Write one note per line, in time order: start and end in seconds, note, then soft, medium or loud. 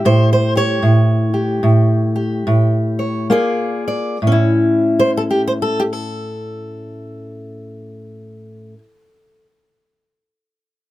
0.00 0.53 G4 soft
0.05 0.81 A2 medium
0.05 0.31 C5 medium
0.33 0.57 C5 medium
0.55 0.80 G4 soft
0.55 2.98 C#5 medium
0.82 1.62 A2 medium
1.34 2.14 G4 soft
1.63 2.45 A2 medium
2.16 3.28 G4 soft
2.47 3.32 A2 medium
2.99 3.27 C#5 soft
3.30 4.17 A#3 medium
3.30 4.17 F4 medium
3.30 4.17 G#4 medium
3.30 3.86 D5 medium
3.88 4.17 D5 medium
4.22 8.73 A2 medium
4.27 8.78 C#4 medium
4.32 8.83 E4 medium
4.99 5.10 C5 medium
5.17 5.21 A4 medium
5.31 5.41 G4 medium
5.47 5.52 C5 medium
5.62 5.80 A4 medium
5.80 5.82 G4 medium
5.93 9.46 A4 medium